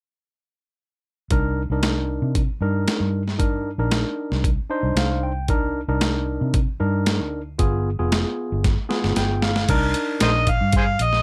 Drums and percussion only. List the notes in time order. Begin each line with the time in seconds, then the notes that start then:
1.30 kick, closed hi-hat
1.83 snare, closed hi-hat
2.35 kick, closed hi-hat
2.88 snare, closed hi-hat
3.28 snare
3.40 kick, closed hi-hat
3.91 snare, closed hi-hat
4.32 snare
4.44 kick, closed hi-hat
4.97 snare, closed hi-hat
5.48 kick, closed hi-hat
6.01 snare, closed hi-hat
6.54 kick, closed hi-hat
7.06 snare, closed hi-hat
7.59 kick, closed hi-hat
8.12 snare, closed hi-hat
8.64 kick, snare, closed hi-hat
8.91 snare
9.04 snare
9.16 snare, closed hi-hat
9.42 snare
9.56 snare
9.69 kick, closed hi-hat, crash
9.94 closed hi-hat
10.20 snare, closed hi-hat
10.47 kick, closed hi-hat
10.72 kick, closed hi-hat
10.99 closed hi-hat
11.13 snare